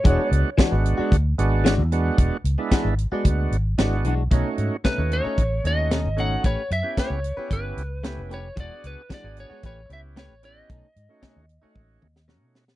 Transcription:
<<
  \new Staff \with { instrumentName = "Lead electric guitar" } { \time 4/4 \key b \dorian \tempo 4 = 113 cis''8 r2. r8 | r1 | r4 b'8 cis''4 dis''4 fis''8 | cis''8 e''8 cis''4 b'4. cis''8 |
d''8 b'8 d''8 cis''8 cis''8 e''8 cis''8 dis''8~ | dis''2. r4 | }
  \new Staff \with { instrumentName = "Tonewheel organ" } { \time 4/4 \key b \dorian <gis b d' fis'>8. r8 <gis b d' fis'>8. r8 <gis b d' fis'>8. r16 <gis b d' fis'>8~ | <gis b d' fis'>16 r8 <gis b d' e'>8. r16 <gis b d' fis'>8. r8 <gis b d' fis'>8. r16 | <a cis' dis' fis'>8. r8 <a cis' dis' fis'>8. r8 <a cis' dis' fis'>8. r16 <a cis' dis' fis'>8 | r8. <b cis' e' g'>8. r16 <b cis' e' g'>8. r8 <b cis' e' g'>8. r16 |
<b d' fis' gis'>8. r8 <b d' fis' gis'>8. r8 <b cis' e' g'>8. r16 <b cis' e' g'>8 | r8. <a cis' dis' fis'>8. r16 <a cis' dis' fis'>8. r8 <a cis' dis' fis'>8. r16 | }
  \new Staff \with { instrumentName = "Clean electric guitar" } { \time 4/4 \key b \dorian <e gis d' fis'>16 r8. <e gis d' fis'>16 r8 <gis d' fis'>16 r4 <e gis d' fis'>16 r8. | r4 <e gis d' fis'>16 r8 <gis d' fis'>16 r4 <e gis d' fis'>16 r16 <e gis d' fis'>16 r16 | <b, a cis' dis'>16 r8. <b, a cis' dis'>16 r8 <a cis' dis'>16 r4 <b, a cis' dis'>16 r16 <b, a cis' dis'>16 r16 | <a cis' g' b'>16 r8. <a cis' g' b'>16 r8 <cis' g' b'>16 r4 <a cis' g' b'>16 r16 <a cis' g' b'>16 r16 |
<e gis d' fis'>16 r8. <e gis d' fis'>16 r8 <gis d' fis'>16 <a cis' g' b'>16 r8. <a cis' g' b'>16 r8. | <b, a cis' dis'>16 r8. <b, a cis' dis'>16 r8 <a cis' dis'>16 r4 <b, a cis' dis'>16 r8. | }
  \new Staff \with { instrumentName = "Fingered electric bass" } { \clef bass \time 4/4 \key b \dorian e,,16 r16 cis,16 r8 gis,,8 r16 d,8 gis,,8. e,8. | e,,16 r16 cis,16 r8 gis,,8 r16 d,8 gis,,8 gis,,8 b,,8 | b,,16 r16 gis,16 r8 dis,8 r16 a,,8 dis,8. gis,,8. | a,,16 r16 fis,16 r8 cis,8 r16 g,,8 cis,8. f,,8. |
e,,16 r16 cis,16 r8 gis,,8 r16 a,,8 cis,8. a,,8. | b,,16 r16 gis,16 r8 dis,8 r16 a,,8 dis,8. b,8. | }
  \new DrumStaff \with { instrumentName = "Drums" } \drummode { \time 4/4 <hh bd>8 hh8 <hh bd sn>8 hh8 <hh bd>8 hh8 <hh sn>8 hh8 | <hh bd>8 hh8 <hh bd sn>8 hh8 <hh bd>8 hh8 <hh sn>8 hh8 | <hh bd>8 hh8 <hh bd sn>8 hh8 <hh bd>8 hh8 <hh sn>8 hh8 | <hh bd>8 hh8 <hh bd sn>8 hh8 <hh bd>8 hh8 <hh sn>8 hh8 |
<hh bd>8 hh8 <hh bd sn>8 hh8 <hh bd>8 hh8 <hh sn>8 hh8 | <hh bd>8 hh8 <hh bd sn>8 hh8 <bd tommh>8 toml16 sn16 sn8 sn16 sn16 | }
>>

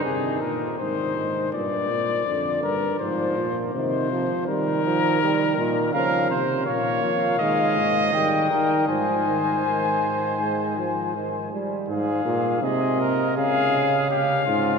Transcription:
<<
  \new Staff \with { instrumentName = "Trumpet" } { \time 4/4 \key aes \major \tempo 4 = 81 aes'8 bes'8 c''4 d''4. bes'8 | c''4 c''4 bes'2 | f''8 r8 f''2 g''4 | aes''2.~ aes''8 r8 |
f''4 ees''4 f''4 f''4 | }
  \new Staff \with { instrumentName = "Trumpet" } { \time 4/4 \key aes \major r1 | r1 | bes'8 c''8 des''4 ees''4. bes'8 | c''2.~ c''8 r8 |
aes'4 aes'8 bes'8 aes'4 g'8 f'8 | }
  \new Staff \with { instrumentName = "Trombone" } { \clef bass \time 4/4 \key aes \major ees4 ees4 bes,4 d4 | f4 ees8 f8 g8 f8 g8 ees8 | f8 r8 bes4 aes4 g4 | f8 ees8 ees4 aes8 f8 ees8 g8 |
r1 | }
  \new Staff \with { instrumentName = "Bass trombone" } { \clef bass \time 4/4 \key aes \major c8 bes,8 aes,8 aes,8 g,8 bes,8 f,8 g,8 | aes,8 bes,8 c4 ees4. bes,8 | des8 c8 bes,8 f8 ees8 aes,8 ees8 ees8 | aes,2.~ aes,8 r8 |
aes,8 bes,8 c4 des4. aes,8 | }
>>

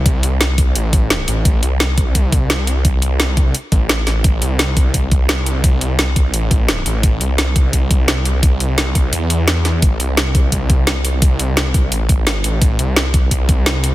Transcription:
<<
  \new Staff \with { instrumentName = "Detuned saw bass" } { \clef bass \time 4/4 \key a \minor \tempo 4 = 172 c,8 c,4. a,,4. a,,8 | a,,8 c,4. c,2~ | c,8 c,4. r8 a,,4 a,,8 | a,,8 c,4. c,2~ |
c,8 c,4. a,,4. a,,8 | a,,8 c,4. c,2~ | c,8 c,4. e,2 | a,,8 c,4. c,2~ |
c,8 c,4. a,,4. a,,8 | a,,8 c,4. c,2 | }
  \new DrumStaff \with { instrumentName = "Drums" } \drummode { \time 4/4 <hh bd>8 hh8 <hh sn>8 <hh bd>8 hh8 <hh bd>8 <hh sn>8 hh8 | <hh bd>8 hh8 <hh sn>8 <hh bd>8 <hh bd>8 <hh bd>8 <hh sn>8 hh8 | <hh bd>8 hh8 <hh sn>8 <hh bd>8 hh8 <hh bd>8 <hh sn>8 <hh sn>8 | <hh bd>8 hh8 <hh sn>8 <hh bd>8 <hh bd>8 <hh bd>8 <hh sn>8 hh8 |
<hh bd>8 hh8 <hh sn>8 <hh bd>8 hh8 <hh bd>8 <hh sn>8 hh8 | <hh bd>8 hh8 <hh sn>8 <hh bd>8 <hh bd>8 <hh bd>8 <hh sn>8 hh8 | <hh bd>8 hh8 <hh sn>8 <hh bd>8 hh8 hh8 <hh sn>8 <hh sn>8 | <hh bd>8 hh8 <hh sn>8 <hh bd>8 <hh bd>8 <hh bd>8 <hh sn>8 hh8 |
<hh bd>8 hh8 <hh sn>8 <hh bd>8 hh8 <hh bd>8 <hh sn>8 hh8 | <hh bd>8 hh8 <hh sn>8 <hh bd>8 <hh bd>8 <hh bd>8 <hh sn>8 hh8 | }
>>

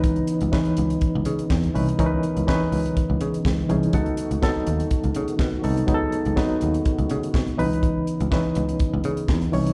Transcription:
<<
  \new Staff \with { instrumentName = "Reed electric piano" } { \time 4/4 \key cis \minor \tempo 4 = 123 <e cis' dis' b'>8 r8 <e cis' dis' b'>4. r4 <e cis' dis' b'>8 | <e cis' dis' ais' b'>4 <e cis' dis' b'>4. r4 <e cis' dis' gis'>8 | <fis b dis' a'>4 <fis b d' dis' a'>4. r4 <fis b dis' a'>8 | <fis b dis' gis' a'>4 <fis b dis' b'>4. r4 <e cis' dis' b'>8~ |
<e cis' dis' b'>8 r8 <e cis' dis' b'>4. r4 <e cis' dis' cis''>8 | }
  \new Staff \with { instrumentName = "Tonewheel organ" } { \time 4/4 \key cis \minor << { <cis e dis'>1~ | <cis e dis'>1 | <dis a fis'>1~ | <dis a fis'>2.~ <dis a fis'>8 <cis e dis'>8~ |
<cis e dis'>1 | } \\ { b1~ | b1 | b1~ | b1~ |
b1 | } >> }
  \new Staff \with { instrumentName = "Picked electric bass" } { \clef bass \time 4/4 \key cis \minor cis,8 r16 cis,16 r8 cis,8 r16 cis,16 cis8 e,8 bis,,8 | cis,8 r16 cis,16 r8 cis,8 r16 cis,16 cis8 cis,8 bis,,8 | cis,8 r16 cis,16 r8 dis,8 r16 cis,16 cis8 b,8 bis,,8 | cis,8 r16 cis,16 r8 dis,8 r16 cis,16 cis8 b,8 cis,8~ |
cis,8 r16 cis,16 r8 cis,8 r16 cis,16 cis8 e,8 bis,,8 | }
  \new DrumStaff \with { instrumentName = "Drums" } \drummode { \time 4/4 <hh bd>16 hh16 hh16 hh16 <bd sn>16 hh16 hh16 hh16 <hh bd>8 hh16 hh16 <bd sn>16 hh16 hho16 hh16 | <hh bd>8 hh16 hh16 <bd sn>8 hho16 hh16 <hh bd>8 hh16 hh16 <bd sn>8 hh16 hh16 | <hh bd>16 hh16 hh16 hh16 <bd sn>8 hh16 hh16 <hh bd>16 hh16 hh16 hh16 <bd sn>8 hho16 hh16 | <hh bd>8 hh16 hh16 <bd sn>8 hh16 hh16 <hh bd>16 hh16 hh16 hh16 <bd sn>16 hh16 hho16 hh16 |
<hh bd>8 hh16 hh16 <bd sn>8 hh16 hh16 <hh bd>8 hh16 hh16 <bd sn>16 hh16 hho16 hh16 | }
>>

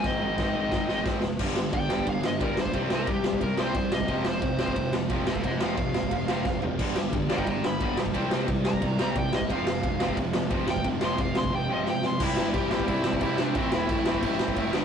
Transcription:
<<
  \new Staff \with { instrumentName = "Lead electric guitar" } { \time 4/4 \key c \major \tempo 4 = 178 ees''2. r4 | r4 g''4 f''8 ees''8 bes'8 c''8 | r8 bes'8 g'4 bes'8 c''4 ees''8~ | ees''8 c''4 c''4 r4 <a' f''>8 |
<c'' ees''>8 f''2. r8 | r4. <ees'' g''>8 <g'' bes''>8 b''4 r8 | r4. bes''4. g''8 ees''8 | f''2 r4. g''8 |
r8 c'''8 f''8 c'''8 g''8 ees''8 g''8 c'''8 | e'4 g'4 e'4 e'8 d'8 | c'8 e'2 r4. | }
  \new Staff \with { instrumentName = "Distorted electric guitar" } { \clef bass \time 4/4 \key c \major <aes, ees aes>4 <aes, ees aes>2~ <aes, ees aes>8 r8 | <g, d g>2.~ <g, d g>8 <g, d g>8 | <c g c'>2.~ <c g c'>8 <c g c'>8 | <f, c f>2.~ <f, c f>8 <f, c f>8 |
<f, c f>2.~ <f, c f>8 <f, c f>8 | <g, d g>2.~ <g, d g>8 <g, d g>8 | <c g c'>2.~ <c g c'>8 <c g c'>8 | <f, c f>2.~ <f, c f>8 <f, c f>8 |
<f, c f>2.~ <f, c f>8 <f, c f>8 | <c g c'>4. <c g c'>2~ <c g c'>8 | <a, e a>4. <a, e a>2 <g, d g>8 | }
  \new Staff \with { instrumentName = "Distorted electric guitar" } { \clef bass \time 4/4 \key c \major <aes, ees aes c' ees'>4 <aes, ees aes c' ees'>4. <aes, ees aes c' ees'>4 r8 | <g, d g>8 <g, d>8 <g, d>8 <g, d g>8 <g, d>8 <g, d>8 <g, d g>8 <g, d>8 | <c g c'>8 <c g c'>8 <c g>8 <c g>8 <c g>8 <c g c'>8 <c g>8 <c g>8 | <f, c f>8 <f, c>8 <f, c>8 <f, c f>8 <f, c>8 <f, c>8 <f, c f>8 <f, c>8 |
<f, c>8 <f, c f>8 <f, c>8 <f, c>8 <f, c>8 <f, c f>8 <f, c>8 <f, c>8 | <g, d g>8 <g, d>8 <g, d>8 <g, d g>8 <g, d>8 <g, d>8 <g, d g>8 <g, d>8 | <c g c'>8 <c g c'>8 <c g>8 <c g>8 <c g>8 <c g c'>8 <c g>8 <c g>8 | <f, c f>8 <f, c>8 <f, c>8 <f, c f>8 <f, c>8 <f, c>8 <f, c f>8 <f, c>8 |
<f, c>8 <f, c f>8 <f, c>8 <f, c>8 <f, c>8 <f, c f>8 <f, c>8 <f, c>8 | <c e g c' e'>4. <c e g c' e'>4. <c e g c' e'>4 | <a, e a c' e'>4. <a, e a c' e'>4. <a, e a c' e'>8 <g, d g b d'>8 | }
  \new Staff \with { instrumentName = "Picked electric bass" } { \clef bass \time 4/4 \key c \major aes,,8 aes,,8 aes,,8 aes,,8 aes,,8 aes,,8 aes,,8 f,,8 | g,,8 g,,8 g,,8 g,,8 g,,8 g,,8 g,,8 d,8 | c,8 c,8 c,8 c,8 c,8 c,8 c,8 c,8 | f,,8 f,,8 f,,8 f,,8 f,,8 f,,8 f,,8 f,,8 |
f,,8 f,,8 f,,8 f,,8 f,,8 f,,8 f,,8 f,,8 | g,,8 g,,8 g,,8 g,,8 g,,8 g,,8 g,,8 b,,8 | c,8 c,8 c,8 c,8 c,8 c,8 c,8 c,8 | f,,8 f,,8 f,,8 f,,8 f,,8 f,,8 f,,8 f,,8 |
f,,8 f,,8 f,,8 d,8 r2 | c,8 g,,8 c,8 a,,8 c,8 c,8 c4 | a,,8 e,,8 a,,8 g,,8 a,,8 a,,8 f,,8 g,,8 | }
  \new DrumStaff \with { instrumentName = "Drums" } \drummode { \time 4/4 <bd sn>4 <bd sn>4 <bd sn>8 sn8 <bd sn>8 sn8 | <cymc bd>8 sn8 <bd cymr>8 sn16 bd16 <bd cymr>8 sn8 <bd cymr>8 sn16 bd16 | <bd cymr>8 sn8 <bd cymr>8 sn16 bd16 <bd cymr>8 sn8 <bd cymr>8 sn16 bd16 | <bd cymr>8 sn8 <bd cymr>8 sn16 bd16 <bd cymr>8 sn8 <bd cymr>8 sn16 bd16 |
<bd cymr>8 sn8 <bd cymr>8 sn16 bd16 <bd cymr>8 sn8 <bd sn>8 tomfh8 | <cymc bd>8 sn8 <bd cymr>8 sn16 bd16 <bd cymr>8 sn8 <bd cymr>8 sn16 bd16 | <bd cymr>8 sn8 <bd cymr>8 sn16 bd16 <bd cymr>8 sn8 <bd cymr>8 sn16 bd16 | <bd cymr>8 sn8 <bd cymr>8 sn16 bd16 <bd cymr>8 sn8 <bd cymr>8 sn16 bd16 |
<bd cymr>8 sn8 <bd cymr>8 sn16 bd16 r4 sn8 sn8 | <cymc bd>8 sn8 <cymc bd>8 sn16 bd16 <cymc bd>8 sn16 bd16 <cymc bd>8 sn8 | <cymc bd>8 sn8 <cymc bd>8 sn16 bd16 <cymc bd>8 sn16 bd16 <cymc bd>8 sn8 | }
>>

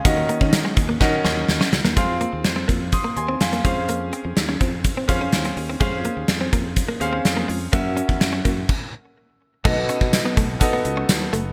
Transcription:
<<
  \new Staff \with { instrumentName = "Grand piano" } { \time 4/4 \key des \major \tempo 4 = 125 << { <f'' aes''>8 r2. r8 | r2 <c''' ees'''>8 <aes'' c'''>8 <f'' aes''>4 | r1 | r1 |
r1 | \key b \mixolydian r1 | } \\ { <des' ges' bes' ees''>4~ <des' ges' bes' ees''>16 r8. <des' ges' bes' ees''>4~ <des' ges' bes' ees''>16 r8. | <c' f' aes' f''>4~ <c' f' aes' f''>16 r2 r16 <des' aes' c'' f''>8~ | <des' aes' c'' f''>4 r4. <des' aes' c'' f''>4 r8 | <des' aes' c'' f''>4~ <des' aes' c'' f''>16 r4 r16 <des' aes' c'' f''>4 r8 |
<des' ges' bes' fes''>4~ <des' ges' bes' fes''>16 r2 r8. | <b dis' fis' a' dis''>4~ <b dis' fis' a' dis''>16 r8. <b dis' fis' a' dis''>4~ <b dis' fis' a' dis''>16 r8. | } >> }
  \new Staff \with { instrumentName = "Grand piano" } { \clef bass \time 4/4 \key des \major ees4. r2 r8 | r1 | r1 | r1 |
r1 | \key b \mixolydian b,4. r2 r8 | }
  \new Staff \with { instrumentName = "Clean electric guitar" } { \time 4/4 \key des \major r8 bes16 des'16 r16 aes16 r16 bes16 r8 des'16 r8 des'16 r16 bes16 | aes16 r16 bes16 r8 c'16 bes16 r8 bes16 r16 c'16 r16 bes16 aes16 r16 | bes16 r16 c'16 r8 des'16 c'16 r8 c'16 r16 des'16 r16 c'16 r16 c'16 | aes16 r16 bes16 r8 c'16 bes16 r8 bes16 r16 c'16 r16 bes16 aes16 r16 |
bes16 r16 des'16 r8 des'16 bes16 r2 r16 | \key b \mixolydian a16 r16 cis'16 r8 b16 a16 r8 b16 r16 cis'16 r8 a16 r16 | }
  \new Staff \with { instrumentName = "Fretless electric bass" } { \clef bass \time 4/4 \key des \major ees,8 r16 ees8 r16 ees,8 ees8 ees,8 ees,16 r16 des,16 ees,16 | f,8. ees,16 f,8 f,8. r16 ees,8 f,8 f,8~ | f,8. f,16 ees,8 f,8. r16 f,8 ees,8 ees,8 | f,8. ees,16 f,8 f,8. r16 ees,8 f,8 f,8 |
ges,8. fes,16 ges,8 ges,8 r2 | \key b \mixolydian b,,8 r16 b,8 r16 b,,8 r8 cis,8 dis,8 fis,,8 | }
  \new DrumStaff \with { instrumentName = "Drums" } \drummode { \time 4/4 <hh bd>8 hh16 bd16 <hh sn tamb>8 <hh bd>8 <bd sn>8 sn8 sn16 sn16 sn16 sn16 | <hh bd>8 hh8 <hh sn>8 <hh bd>8 <hh bd>8 hh8 <hh sn>16 hh16 <hh bd>8 | hh8 hh8 <hh sn>8 <hh bd>8 <hh bd>8 <hh bd>8 <hh sn>16 hh16 hho8 | <hh bd>8 hh8 <hh sn>8 <hh bd>8 <hh bd>8 hh8 <hh sn>8 hho8 |
<hh bd>8 hh16 bd16 <hh sn>8 <hh bd>8 <cymc bd>4 r4 | <cymc bd>8 hh16 bd16 <hh sn tamb>8 <hh bd>8 <hh bd>8 hh8 <hh sn tamb>8 hh8 | }
>>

